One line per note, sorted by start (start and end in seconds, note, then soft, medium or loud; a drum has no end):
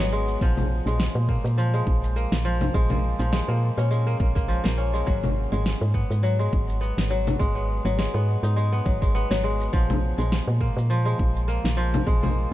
0.00 0.37 G#1 medium
0.00 0.46 F#3 medium
0.00 0.11 G#3 medium
0.00 1.35 B3 loud
0.00 0.74 D#4 medium
0.13 0.46 G#3 loud
0.28 shaker medium
0.41 0.81 A#1 loud
0.41 1.56 F3 medium
0.41 kick loud
0.41 shaker medium
0.57 low conga medium
0.57 shaker soft
0.86 1.09 A#1 loud
0.86 1.73 G#3 medium
0.86 shaker medium
1.00 snare medium
1.00 shaker medium
1.15 1.38 A#2 medium
1.15 shaker soft
1.29 2.16 A#3 medium
1.29 kick medium
1.44 1.82 A#2 medium
1.44 shaker medium
1.58 2.44 F3 medium
1.58 shaker medium
1.74 2.73 G#3 medium
1.74 shaker soft
1.87 2.27 A#1 medium
1.87 kick loud
2.04 shaker medium
2.16 2.90 A#3 medium
2.16 shaker medium
2.32 2.70 A#1 medium
2.32 snare medium
2.32 shaker soft
2.45 3.18 F3 loud
2.61 low conga medium
2.61 shaker medium
2.74 3.14 A#1 loud
2.74 3.31 G#3 loud
2.74 kick loud
2.74 shaker soft
2.90 3.48 A#3 medium
2.90 low conga medium
2.90 shaker soft
3.19 3.42 A#1 loud
3.19 4.47 F3 medium
3.19 shaker medium
3.32 3.89 G#3 medium
3.32 snare medium
3.32 shaker medium
3.48 3.71 A#2 medium
3.48 4.06 A#3 medium
3.48 shaker soft
3.77 4.16 A#2 medium
3.77 4.77 C#4 medium
3.77 shaker medium
3.91 4.92 G#3 medium
3.91 shaker medium
4.07 4.19 A#3 medium
4.07 shaker soft
4.20 4.60 A#1 medium
4.20 4.35 A#3 medium
4.20 kick loud
4.35 4.63 A#3 medium
4.35 kick loud
4.35 shaker medium
4.48 5.12 F3 medium
4.48 shaker medium
4.64 5.03 A#1 medium
4.64 6.00 A#3 medium
4.64 snare medium
4.64 shaker soft
4.77 6.51 C#4 medium
4.93 5.12 G#3 medium
4.93 shaker medium
5.06 5.47 G#1 medium
5.06 6.22 F#3 medium
5.06 kick loud
5.06 shaker soft
5.24 low conga medium
5.24 shaker soft
5.52 5.75 G#1 loud
5.52 6.38 G#3 medium
5.52 shaker medium
5.66 snare medium
5.66 shaker medium
5.81 6.04 G#2 loud
5.81 shaker soft
5.94 6.80 B3 medium
5.94 kick medium
6.10 6.48 G#2 medium
6.10 shaker medium
6.23 7.09 F#3 medium
6.23 shaker medium
6.39 7.38 G#3 medium
6.39 shaker soft
6.53 6.93 G#1 medium
6.53 kick loud
6.69 shaker medium
6.81 7.55 B3 medium
6.81 shaker medium
6.98 7.36 G#1 medium
6.98 snare medium
6.98 shaker soft
7.10 7.84 F#3 medium
7.27 low conga medium
7.27 shaker medium
7.39 7.80 G#1 loud
7.39 7.97 G#3 loud
7.39 kick loud
7.39 shaker soft
7.55 8.14 B3 medium
7.55 shaker soft
7.85 8.08 G#1 loud
7.85 8.84 F#3 medium
7.85 shaker medium
7.98 8.55 G#3 medium
7.98 snare medium
7.98 shaker medium
8.14 8.37 G#2 medium
8.14 8.72 B3 medium
8.14 shaker soft
8.43 8.81 G#2 medium
8.43 10.05 D#4 medium
8.43 shaker medium
8.56 9.00 G#3 medium
8.56 shaker medium
8.72 9.14 B3 medium
8.72 shaker soft
8.85 9.26 G#1 loud
8.85 9.29 F#3 medium
8.85 kick loud
9.02 9.43 G#3 medium
9.02 kick loud
9.02 shaker medium
9.15 10.67 B3 loud
9.15 shaker medium
9.31 9.69 G#1 medium
9.31 9.78 F#3 loud
9.31 snare medium
9.31 shaker soft
9.44 9.78 G#3 medium
9.61 shaker medium
9.73 10.13 A#1 loud
9.73 10.89 F3 loud
9.73 kick loud
9.73 shaker soft
9.90 low conga medium
9.90 shaker soft
10.18 10.41 A#1 loud
10.18 11.04 G#3 medium
10.18 shaker medium
10.32 snare medium
10.32 shaker medium
10.48 10.70 A#2 loud
10.48 shaker soft
10.61 11.47 A#3 medium
10.61 kick medium
10.77 11.14 A#2 loud
10.77 shaker medium
10.90 11.76 F3 loud
10.90 shaker medium
11.05 12.05 G#3 medium
11.05 shaker soft
11.19 11.59 A#1 loud
11.19 kick loud
11.36 shaker medium
11.48 12.22 A#3 medium
11.48 shaker medium
11.64 12.02 A#1 medium
11.64 snare medium
11.64 shaker soft
11.77 12.50 F3 medium
11.94 low conga medium
11.94 shaker medium
12.07 12.46 A#1 loud
12.07 12.53 G#3 medium
12.07 kick loud
12.07 shaker soft
12.23 12.53 A#3 medium
12.23 low conga medium
12.23 shaker soft